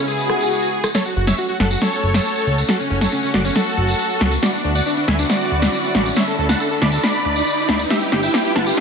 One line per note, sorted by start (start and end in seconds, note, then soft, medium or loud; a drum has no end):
0.00 0.93 C#3 medium
0.00 0.93 G#3 medium
0.00 0.93 B3 medium
0.00 0.93 E4 medium
0.08 0.86 G#4 loud
0.08 tambourine medium
0.08 swell medium
0.19 tambourine soft
0.30 cross-stick medium
0.41 tambourine medium
0.51 tambourine medium
0.63 tambourine soft
0.84 cross-stick medium
0.84 tambourine medium
0.95 4.39 A3 medium
0.95 4.39 C#4 medium
0.95 7.86 F#4 medium
0.95 1.03 A4 medium
0.95 1.03 C#5 medium
0.95 snare soft
0.95 closed hi-hat medium
0.95 tambourine medium
0.95 riser medium
1.06 1.14 F#4 medium
1.06 closed hi-hat soft
1.06 tambourine soft
1.16 1.33 F#1 loud
1.16 1.25 F#4 medium
1.16 open hi-hat medium
1.27 1.36 C#5 medium
1.27 1.36 E5 medium
1.27 snare soft
1.27 closed hi-hat soft
1.27 tambourine medium
1.38 1.47 F#4 medium
1.38 closed hi-hat medium
1.38 tambourine medium
1.48 1.58 F#4 medium
1.48 closed hi-hat medium
1.48 tambourine soft
1.60 1.76 F#1 medium
1.60 1.68 A4 medium
1.60 1.68 F#5 medium
1.60 snare soft
1.60 open hi-hat loud
1.71 1.79 F#4 medium
1.71 closed hi-hat medium
1.71 tambourine medium
1.81 2.60 A4 medium
1.81 2.60 C#5 loud
1.81 snare soft
1.81 closed hi-hat medium
1.81 tambourine medium
1.93 closed hi-hat medium
1.93 tambourine soft
2.03 2.20 F#1 medium
2.03 open hi-hat loud
2.14 snare soft
2.14 closed hi-hat medium
2.14 tambourine medium
2.25 closed hi-hat medium
2.25 tambourine medium
2.36 closed hi-hat medium
2.36 tambourine soft
2.47 2.63 C#2 medium
2.47 open hi-hat loud
2.58 closed hi-hat medium
2.58 tambourine medium
2.68 2.77 F#4 medium
2.68 2.77 A4 loud
2.68 snare soft
2.68 closed hi-hat medium
2.68 tambourine medium
2.80 2.88 C#4 medium
2.80 closed hi-hat soft
2.80 tambourine soft
2.90 3.07 F#1 loud
2.90 2.99 C#4 medium
2.90 open hi-hat loud
3.01 3.10 A4 medium
3.01 3.10 C#5 medium
3.01 snare soft
3.01 closed hi-hat soft
3.01 tambourine medium
3.12 3.21 C#4 medium
3.12 closed hi-hat medium
3.12 tambourine medium
3.23 3.31 C#4 medium
3.23 closed hi-hat soft
3.23 tambourine soft
3.34 3.50 F#1 loud
3.34 3.42 F#4 medium
3.34 3.42 D5 medium
3.34 snare medium
3.34 open hi-hat loud
3.45 3.53 C#4 medium
3.45 closed hi-hat medium
3.45 tambourine medium
3.55 4.34 F#4 medium
3.55 4.34 A4 loud
3.55 snare medium
3.55 closed hi-hat medium
3.55 tambourine medium
3.67 closed hi-hat medium
3.67 tambourine soft
3.77 3.94 F#1 medium
3.77 open hi-hat loud
3.88 closed hi-hat soft
3.88 tambourine medium
3.99 closed hi-hat medium
3.99 tambourine medium
4.10 closed hi-hat medium
4.10 tambourine soft
4.21 4.37 C#2 medium
4.21 snare medium
4.21 open hi-hat loud
4.31 closed hi-hat soft
4.31 tambourine medium
4.43 7.87 D3 medium
4.43 8.80 D4 medium
4.43 7.87 E4 medium
4.43 4.51 F#4 medium
4.43 4.51 D5 loud
4.43 snare medium
4.43 closed hi-hat medium
4.43 tambourine medium
4.53 4.62 D4 medium
4.53 closed hi-hat soft
4.53 tambourine soft
4.64 4.81 D2 loud
4.64 4.73 D4 medium
4.64 open hi-hat loud
4.75 4.84 D5 medium
4.75 4.84 F#5 medium
4.75 closed hi-hat soft
4.75 tambourine medium
4.86 4.94 D4 medium
4.86 closed hi-hat medium
4.86 tambourine medium
4.97 5.05 D4 medium
4.97 closed hi-hat medium
4.97 tambourine soft
5.08 5.24 D2 medium
5.08 5.16 E5 medium
5.08 5.16 G#5 medium
5.08 snare medium
5.08 open hi-hat loud
5.19 5.27 D4 medium
5.19 closed hi-hat soft
5.19 tambourine medium
5.29 6.08 F#4 medium
5.29 6.08 D5 loud
5.29 snare medium
5.29 closed hi-hat medium
5.29 tambourine medium
5.40 closed hi-hat soft
5.40 tambourine soft
5.51 5.68 D2 medium
5.51 open hi-hat loud
5.62 snare medium
5.62 tambourine medium
5.73 closed hi-hat medium
5.73 tambourine medium
5.84 closed hi-hat soft
5.84 tambourine soft
5.95 6.11 A1 medium
5.95 snare medium
5.95 open hi-hat loud
6.06 closed hi-hat soft
6.06 tambourine medium
6.16 6.25 C#5 medium
6.16 6.25 E5 loud
6.16 snare medium
6.16 closed hi-hat medium
6.16 tambourine medium
6.27 6.36 A4 medium
6.27 closed hi-hat soft
6.27 tambourine soft
6.38 6.55 D2 loud
6.38 6.47 A4 medium
6.38 open hi-hat loud
6.49 6.58 F#5 medium
6.49 6.58 A5 medium
6.49 snare medium
6.49 tambourine medium
6.60 6.68 A4 medium
6.60 closed hi-hat medium
6.60 tambourine medium
6.71 6.79 A4 medium
6.71 closed hi-hat soft
6.71 tambourine soft
6.82 6.98 D2 medium
6.82 6.90 D5 medium
6.82 6.90 B5 medium
6.82 snare medium
6.82 open hi-hat loud
6.92 7.01 A4 medium
6.92 closed hi-hat soft
6.92 tambourine medium
7.04 7.82 D5 medium
7.04 7.82 B5 loud
7.04 snare medium
7.04 closed hi-hat medium
7.04 tambourine medium
7.14 closed hi-hat soft
7.14 tambourine soft
7.25 7.42 D2 medium
7.25 open hi-hat loud
7.36 closed hi-hat soft
7.36 tambourine medium
7.47 closed hi-hat medium
7.47 tambourine medium
7.57 closed hi-hat soft
7.57 tambourine soft
7.69 7.85 D2 medium
7.69 snare medium
7.69 open hi-hat loud
7.79 closed hi-hat soft
7.79 tambourine medium
7.90 8.80 G3 medium
7.90 8.80 E4 medium
7.90 7.99 G4 medium
7.90 8.80 B4 medium
7.90 7.99 E5 medium
7.90 snare medium
7.90 closed hi-hat medium
7.90 tambourine medium
8.01 8.10 G4 medium
8.01 closed hi-hat soft
8.01 tambourine soft
8.12 8.29 G1 loud
8.12 8.21 G4 medium
8.12 snare medium
8.12 open hi-hat loud
8.23 8.31 E5 medium
8.23 8.31 G5 medium
8.23 closed hi-hat soft
8.23 tambourine medium
8.34 8.42 G4 medium
8.34 snare medium
8.34 closed hi-hat medium
8.34 tambourine medium
8.45 8.53 G4 medium
8.45 closed hi-hat soft
8.45 tambourine soft
8.56 8.72 G1 medium
8.56 8.64 F#5 medium
8.56 8.64 A5 medium
8.56 snare medium
8.56 open hi-hat loud
8.66 8.75 G4 medium
8.66 closed hi-hat soft
8.66 tambourine medium
8.77 8.80 G4 medium
8.77 8.80 E5 loud
8.77 tambourine medium